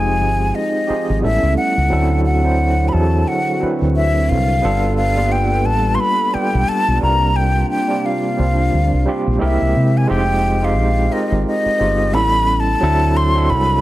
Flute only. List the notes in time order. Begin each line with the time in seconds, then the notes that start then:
Already playing: G#5
0.55 D#5
1.23 E5
1.57 F#5
2.25 F#5
2.88 B5
2.93 A5
3.28 F#5
3.96 E5
4.29 F5
4.96 F5
5.32 G5
5.65 A5
5.95 C6
6.00 B5
6.34 G5
6.69 A5
7.02 A#5
7.36 G5
7.70 G5
8.06 F5
9.44 E5
9.97 G#5
10.10 G5
10.65 F5
11.12 D#5
11.47 D#5
12.14 B5
12.60 A5
13.17 C6
13.50 B5